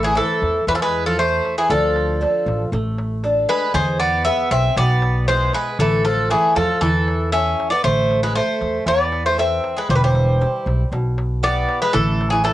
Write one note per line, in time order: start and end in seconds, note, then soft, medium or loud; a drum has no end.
0.00 0.19 A1 medium
0.00 0.14 E3 medium
0.00 0.15 A3 medium
0.04 0.17 G#4 medium
0.04 darbuka tek soft
0.15 0.63 E3 medium
0.15 0.58 E4 soft
0.15 0.64 A4 medium
0.15 0.58 A4 soft
0.15 0.58 C5 medium
0.15 darbuka tek medium
0.42 0.60 E2 medium
0.42 darbuka tek medium
0.67 1.39 E2 medium
0.67 1.18 E3 medium
0.67 0.74 E3 medium
0.67 0.75 B4 medium
0.67 darbuka tek medium
0.75 0.81 F3 medium
0.75 0.82 A4 medium
0.82 1.05 G#3 medium
0.82 1.06 B4 medium
1.06 1.18 F3 medium
1.06 1.19 A4 medium
1.19 1.55 A3 medium
1.19 1.60 E4 soft
1.19 1.60 A4 soft
1.19 1.55 C5 medium
1.19 1.60 C5 medium
1.19 darbuka tek medium
1.45 darbuka tek medium
1.58 1.69 E3 medium
1.58 1.70 G#4 medium
1.58 darbuka tek soft
1.70 2.24 D2 loud
1.70 2.20 D3 medium
1.70 2.69 F3 medium
1.70 2.68 A4 medium
1.70 darbuka dum medium
1.84 darbuka tek soft
1.96 darbuka tek medium
2.10 darbuka tek soft
2.21 2.62 D4 soft
2.21 2.62 F4 soft
2.21 2.62 A4 soft
2.21 darbuka tek medium
2.46 2.64 A1 medium
2.46 darbuka tek medium
2.72 3.44 A1 medium
2.72 3.22 A3 medium
2.72 darbuka tek medium
2.98 darbuka tek medium
3.24 3.65 D4 medium
3.24 3.65 F4 soft
3.24 3.65 A4 soft
3.24 darbuka tek medium
3.37 darbuka tek soft
3.49 3.73 G#3 medium
3.49 3.73 B4 medium
3.49 darbuka tek medium
3.62 darbuka tek soft
3.74 4.28 E2 loud
3.74 4.24 E3 medium
3.74 3.98 G#3 medium
3.74 3.98 C5 loud
3.74 darbuka dum medium
3.87 darbuka tek soft
4.00 4.24 B3 medium
4.00 4.24 D5 loud
4.00 darbuka tek medium
4.25 4.66 B3 soft
4.25 4.50 B3 medium
4.25 4.67 E4 soft
4.25 4.67 G#4 medium
4.25 4.50 E5 loud
4.25 darbuka tek medium
4.51 4.69 B1 medium
4.51 4.75 C4 medium
4.51 4.77 E5 loud
4.51 darbuka tek medium
4.76 5.48 B1 loud
4.76 5.27 B2 medium
4.76 5.25 B3 medium
4.76 5.27 D5 loud
4.76 darbuka tek medium
5.02 darbuka tek medium
5.28 5.52 G#3 medium
5.28 5.69 B3 medium
5.28 5.70 E4 soft
5.28 5.70 G#4 medium
5.28 5.52 C5 medium
5.28 darbuka tek medium
5.53 5.78 G#3 medium
5.53 5.78 B4 medium
5.53 darbuka tek medium
5.67 darbuka tek soft
5.79 6.33 A1 loud
5.79 6.04 E3 medium
5.79 6.30 A3 medium
5.79 6.03 A4 medium
5.79 darbuka dum loud
5.92 darbuka tek soft
6.05 6.29 F3 medium
6.05 6.29 A4 medium
6.05 darbuka tek medium
6.30 6.54 E3 medium
6.30 6.72 E4 soft
6.30 6.54 G#4 medium
6.30 6.72 A4 soft
6.30 6.72 C#5 soft
6.30 darbuka tek medium
6.56 6.74 E2 medium
6.56 6.80 F3 medium
6.56 6.80 A4 medium
6.56 darbuka tek medium
6.69 darbuka tek soft
6.81 7.53 E2 medium
6.81 7.29 E3 medium
6.81 7.32 E3 medium
6.81 7.32 A4 medium
6.81 darbuka tek medium
6.81 darbuka dum medium
6.95 darbuka tek soft
7.08 darbuka tek medium
7.21 darbuka tek soft
7.32 7.69 C#4 medium
7.32 7.74 E4 soft
7.32 7.74 A4 soft
7.32 7.75 C#5 soft
7.32 7.68 E5 medium
7.32 darbuka tek medium
7.60 darbuka tek medium
7.70 7.84 B3 medium
7.70 7.83 D5 medium
7.70 darbuka tek soft
7.84 8.38 A1 loud
7.84 8.20 A3 medium
7.84 8.34 A3 medium
7.84 8.20 C5 medium
7.84 darbuka dum medium
8.11 darbuka tek medium
8.23 8.35 G#3 medium
8.23 8.35 B4 medium
8.23 darbuka tek soft
8.36 8.84 A3 medium
8.36 8.77 A4 soft
8.36 8.83 C5 medium
8.36 8.77 C5 soft
8.36 darbuka tek medium
8.61 8.79 E2 medium
8.61 darbuka tek medium
8.86 9.58 E2 medium
8.86 9.37 E3 medium
8.86 9.22 B3 medium
8.86 9.23 D5 medium
8.86 darbuka tek medium
9.12 darbuka tek medium
9.26 9.37 A3 medium
9.26 9.37 C5 medium
9.38 9.74 C4 medium
9.38 9.79 A4 soft
9.38 9.79 B4 soft
9.38 9.80 C5 medium
9.38 9.74 E5 medium
9.38 darbuka tek medium
9.64 darbuka tek medium
9.76 9.88 G#3 medium
9.76 9.89 B4 medium
9.76 darbuka tek soft
9.89 10.43 E1 loud
9.89 10.39 E3 medium
9.89 9.95 G3 medium
9.89 9.95 C5 medium
9.89 darbuka dum loud
9.95 10.03 G3 medium
9.95 10.03 B4 medium
10.02 10.88 G3 medium
10.02 10.88 C5 medium
10.02 darbuka tek soft
10.15 darbuka tek medium
10.41 10.82 E4 soft
10.41 10.82 G4 soft
10.41 darbuka tek medium
10.66 10.84 B1 medium
10.66 darbuka tek medium
10.92 11.63 B1 medium
10.92 11.42 B2 medium
10.92 darbuka tek medium
11.18 darbuka tek medium
11.43 11.79 B3 medium
11.43 11.84 E4 medium
11.43 11.84 G4 soft
11.43 11.84 B4 medium
11.43 11.81 D5 medium
11.43 darbuka tek medium
11.69 darbuka tek medium
11.82 11.93 G#3 medium
11.82 11.94 B4 medium
11.93 12.48 A1 loud
11.93 12.30 E3 medium
11.93 12.44 A3 medium
11.93 12.29 A4 loud
11.93 darbuka dum medium
12.08 darbuka tek soft
12.21 darbuka tek medium
12.30 12.42 E3 medium
12.30 12.43 G#4 medium
12.30 darbuka tek soft
12.44 12.53 E3 medium
12.44 12.53 E4 soft
12.44 12.53 A4 medium
12.44 12.53 A4 soft
12.44 12.53 C#5 soft
12.44 darbuka tek medium